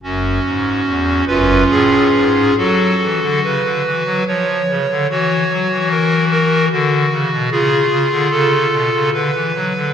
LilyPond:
<<
  \new Staff \with { instrumentName = "Pipe organ" } { \time 3/4 \key fis \minor \tempo 4 = 72 << { fis,,8 r4 <fis,, b'>8 gis'4 | a'4 b'4 cis''4 | cis''4 ais'8 ais'8 fis'4 | gis'4 a'4 b'4 | } \\ { <cis' fis'>4. <cis' eis'>4. | fis'2 r4 | fis'2 r4 | eis'2 r4 | } >> }
  \new Staff \with { instrumentName = "Pipe organ" } { \clef bass \time 3/4 \key fis \minor fis,8 gis,8 e,8 fis,8 a,8 gis,8 | fis8 e16 d16 cis16 d16 e16 fis16 eis8 cis16 d16 | e8 fis16 e4~ e16 d8 cis16 b,16 | cis8 cis16 d16 cis8 b,16 cis16 d16 e16 fis16 d16 | }
>>